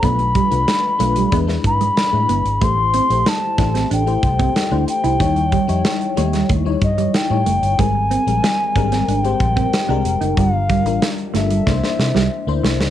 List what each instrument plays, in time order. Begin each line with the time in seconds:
0.02 fingered electric bass B1, fm electric piano A3 D4 F4 B4, clean electric guitar B3, ocarina B5, kick, closed hi-hat
0.19 muted clean electric guitar stroke, closed hi-hat
0.35 clean electric guitar G3, kick, closed hi-hat
0.50 fingered electric bass C2, fm electric piano A3 D4 F4 B4, closed hi-hat
0.68 muted clean electric guitar stroke, snare, closed hi-hat
0.99 fingered electric bass B1, fm electric piano A3 D4 F4 B4, clean electric guitar A3, closed hi-hat
1.16 clean electric guitar G3, closed hi-hat
1.32 fingered electric bass E2, fm electric piano G#3 D4 E4 B4, clean electric guitar B3, kick, closed hi-hat
1.47 fm electric piano G#3 D4 E4 B4, snare
1.64 fingered electric bass G#2, ocarina B5, muted clean electric guitar stroke, kick, closed hi-hat
1.81 clean electric guitar G#3, closed hi-hat
1.97 snare, closed hi-hat
2.12 fingered electric bass A2, fm electric piano G#3 D4 E4 B4
2.29 fingered electric bass G1, clean electric guitar B3, closed hi-hat
2.45 fingered electric bass G#1, closed hi-hat
2.61 fingered electric bass A1, fm electric piano A3 E4 G4 C5, clean electric guitar A3, ocarina C6, kick, closed hi-hat
2.78 muted clean electric guitar stroke
2.94 clean electric guitar C4, closed hi-hat
3.10 fingered electric bass A#1, fm electric piano A3 E4 G4 C5, closed hi-hat
3.26 ocarina A5, muted clean electric guitar stroke, snare, closed hi-hat
3.58 fingered electric bass A1, fm electric piano A3 E4 G4 A4, clean electric guitar D4, kick, snare, closed hi-hat
3.75 clean electric guitar C4, snare, closed hi-hat
3.91 fingered electric bass A1, clean electric guitar D4, ocarina G5, closed hi-hat
4.06 fm electric piano A3 E4 G4 C5, muted clean electric guitar stroke, closed hi-hat
4.23 fingered electric bass C2, kick, closed hi-hat
4.39 clean electric guitar C4, kick, closed hi-hat
4.56 snare, closed hi-hat
4.71 fingered electric bass D2, fm electric piano A3 E4 G4 C5, clean electric guitar D4
4.88 ocarina G5, muted clean electric guitar stroke, closed hi-hat
5.04 fingered electric bass C2, clean electric guitar E4, closed hi-hat
5.19 fingered electric bass D#2, fm electric piano G3 D#4 E4 C#5, clean electric guitar D#4, kick, closed hi-hat
5.36 muted clean electric guitar stroke, closed hi-hat
5.52 clean electric guitar G3, kick, closed hi-hat
5.67 fingered electric bass F2, fm electric piano G3 D#4 E4 C#5, closed hi-hat
5.85 muted clean electric guitar stroke, snare, closed hi-hat
6.01 closed hi-hat
6.16 fingered electric bass D#2, fm electric piano G3 D#4 E4 C#5, clean electric guitar A3, closed hi-hat
6.33 clean electric guitar G3, snare, closed hi-hat
6.49 fingered electric bass D#2, clean electric guitar A3, kick, closed hi-hat
6.65 fm electric piano G3 D#4 E4 C#5
6.81 fingered electric bass G2, ocarina D#5, muted clean electric guitar stroke, kick, closed hi-hat
6.98 clean electric guitar G3, closed hi-hat
7.14 ocarina G5, snare, closed hi-hat
7.30 fingered electric bass A2, fm electric piano G3 D#4 E4 C#5
7.46 fingered electric bass F#1, clean electric guitar A3, closed hi-hat
7.62 fingered electric bass G1, closed hi-hat
7.79 fingered electric bass G#1, fm electric piano G3 G#3 C4 A#4, clean electric guitar G#3, ocarina G#5, kick, closed hi-hat
7.95 muted clean electric guitar stroke
8.11 clean electric guitar C4, closed hi-hat
8.27 fingered electric bass A#1, fm electric piano G3 G#3 C4 A#4, closed hi-hat
8.43 muted clean electric guitar stroke, snare, closed hi-hat
8.76 fingered electric bass G#1, fm electric piano G3 G#3 C4 A#4, clean electric guitar D4, kick, closed hi-hat
8.92 clean electric guitar C4, snare, closed hi-hat
9.08 fingered electric bass G#1, clean electric guitar D4, ocarina G5, closed hi-hat
9.24 fm electric piano G#3 C4 G4 C5, muted clean electric guitar stroke, closed hi-hat
9.40 fingered electric bass A#1, kick, closed hi-hat
9.56 clean electric guitar C4, kick, closed hi-hat
9.73 snare, closed hi-hat
9.89 fingered electric bass C2, fm electric piano G#3 C4 G4 A#4, clean electric guitar D4
10.04 fingered electric bass F1, muted clean electric guitar stroke, closed hi-hat
10.21 fingered electric bass F#1, clean electric guitar D#4, closed hi-hat
10.37 fingered electric bass G1, fm electric piano G3 D4 F4 A#4, clean electric guitar G3, ocarina F5, kick, closed hi-hat
10.54 muted clean electric guitar stroke
10.69 clean electric guitar G3, kick, closed hi-hat
10.85 fingered electric bass A1, fm electric piano G3 D4 F4 A#4, closed hi-hat
11.02 muted clean electric guitar stroke, snare, closed hi-hat
11.18 closed hi-hat
11.34 fingered electric bass G1, fm electric piano G3 D4 F4 A4, clean electric guitar A3, ocarina E5, snare, closed hi-hat
11.50 clean electric guitar G3, closed hi-hat
11.66 fingered electric bass C2, clean electric guitar A3, fm electric piano A#3 D4 E4 C5, kick, snare
11.83 fm electric piano A#3 D4 E4 C5, snare
11.99 fingered electric bass C3, muted clean electric guitar stroke, snare
12.15 fingered electric bass C2, clean electric guitar G3, snare
12.47 fingered electric bass D2, fm electric piano A#3 D4 E4 C5
12.63 fingered electric bass C2, clean electric guitar A3, snare
12.79 fingered electric bass C#2, snare